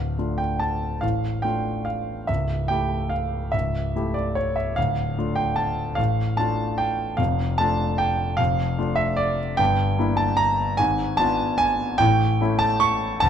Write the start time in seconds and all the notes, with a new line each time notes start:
Already playing: D1 D2 F5
0.18 A3 D4 F4
0.38 G5
0.59 A5
1.01 A1 A2 F5
1.42 A3 D4 F4 G5
1.85 F5
2.27 C#1 C#2 E5
2.68 A3 E4 G4 G5
3.09 F5
3.52 C#1 C#2 E5
3.96 A3 E4 G4
4.14 D5
4.35 C#5
4.56 E5
4.76 D1 D2 F5
5.18 A3 D4 F4
5.36 G5
5.56 A5
5.95 A1 A2 F5
6.37 A3 D4 F4 A5
6.78 G5
7.17 F1 F2 F5
7.58 A3 D4 F4 A5
7.98 G5
8.37 F1 F2 F5
8.78 A3 D4 F4
8.96 E5
9.17 D5
9.57 G1 G2 G5
9.98 A#3 D4 E4
10.17 A5
10.37 A#5
10.77 G#1 G#2 G#5
11.17 B3 D4 F4 A5
11.58 G#5
11.98 A1 A2 G5
12.41 A3 C#4 E4
12.59 A5
12.80 C#6
13.20 D1 D2 A5